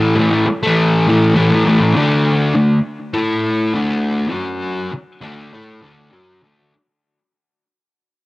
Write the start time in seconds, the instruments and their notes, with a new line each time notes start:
Already playing: distorted electric guitar A2 E3 A3
0.15 distorted electric guitar A2 E3 A3
0.30 distorted electric guitar E3 A3
0.46 muted distorted electric guitar stroke
0.63 distorted electric guitar E3 A3
1.07 distorted electric guitar A2 E3 A3
1.35 distorted electric guitar A2 E3 A3
1.51 distorted electric guitar E3 A3
1.66 distorted electric guitar A2 E3 A3
1.80 distorted electric guitar E3 A3
1.96 distorted electric guitar D3 A3 D4
2.55 distorted electric guitar D3 A3
3.13 distorted electric guitar A3 E4 A4
3.74 distorted electric guitar D3 A3 D4
4.31 distorted electric guitar F#3 C#4 F#4
4.94 muted distorted electric guitar stroke
5.21 distorted electric guitar D3 A3 D4
5.54 distorted electric guitar A3 E4 A4
5.81 distorted electric guitar D3 A3 D4
6.11 distorted electric guitar F#3 C#4 F#4
6.41 distorted electric guitar D3 A3 D4